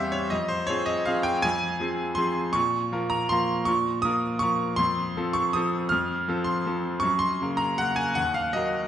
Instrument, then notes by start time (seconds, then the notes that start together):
grand piano
Already playing: E2 G3 C4 G4 C5 E5 F5
0.12 C#5
0.30 F2 D#5
0.48 C5
0.67 F3 C4 G#4 C#5
0.86 D#5
1.05 F3 C4 G#4 F5
1.23 G5
1.42 F2 G#5
1.80 F3 C4 G#4
2.15 F3 C4 G#4 C6
2.53 A#2 C#6
2.92 F3 A#3 A#4
3.10 A#5
3.29 F3 A#3 A#4 C6
3.65 A#2 C#6
4.02 F3 A#3 A#4 D#6
4.39 F3 A#3 A#4 C#6
4.76 F2 C6
5.17 F3 C4 A4
5.33 C#6
5.53 F3 C4 A4 D#6
5.89 F2 F6
6.28 F3 C4 A4
6.44 C6
6.66 F3 C4 A4
7.00 F#2 C#6
7.19 C6
7.42 C#3 A#3 A#4
7.57 A#5
7.78 C#3 A#3 A#4 F#5
7.96 G#5
8.15 D#2 F#5
8.34 F5
8.53 F#3 A#3 A#4 D#5